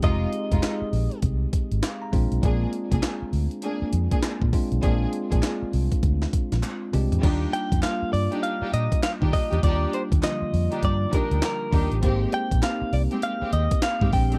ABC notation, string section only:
X:1
M:4/4
L:1/16
Q:"Swing 16ths" 1/4=100
K:Eb
V:1 name="String section"
[A,EF] z2 [A,EF] z12 | [B,DA] z2 [B,DA] z4 [B,DA] z2 [B,DA] z4 | [B,DA] z2 [B,DA] z12 | [DEG]2 z4 z [DEG] z [DEG] z3 [DEG] z [DEG] |
[DEG]2 z4 z [DEG] z2 [DEG] z3 [DEG] z | [A,CG]2 z4 z [A,CG] z [A,CG] z3 [A,CG] z [A,CDG] |]